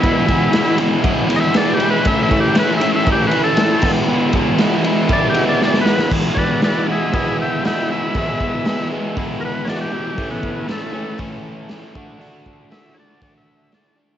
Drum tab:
CC |----------------|--------------x-|----------------|x---------------|
RD |x-x-x-x-x-x-x-x-|x-x-x-x-x-x-x---|--x-x-x-x-x-----|----------------|
HH |----------------|----------------|----------------|----o---o---o---|
SD |----o-------o---|----o-------o---|----o-------oooo|----o-------o---|
BD |o-o-----o-------|o-o-----o-----o-|--o-----o-------|o-o-----o-------|

CC |----------------|----------------|----------------|
RD |----------------|----------------|----------------|
HH |o---o---o---o---|o---o---o---o---|o---o---o---o---|
SD |----o-------o---|----o-------o---|----o-------o---|
BD |o-o-----o-------|o-o-----o-----o-|--o-----o-------|